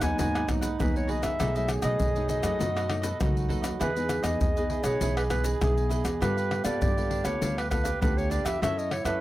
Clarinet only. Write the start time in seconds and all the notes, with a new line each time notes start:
0.03 G#5
0.20 G#5
0.81 B4
0.97 C#5
1.10 D#5
1.24 E5
1.57 E5
1.84 D#5
2.30 D#5
3.82 B4
4.24 D#5
4.41 D#5
4.83 C#5
5.17 B4
5.30 B4
5.61 G#4
6.22 B4
6.65 D5
6.82 D5
7.25 C#5
7.58 B4
7.70 B4
8.02 B4
8.17 C#5
8.31 D5
8.45 E5
8.62 E5
8.78 D#5
8.92 C#5
9.06 B4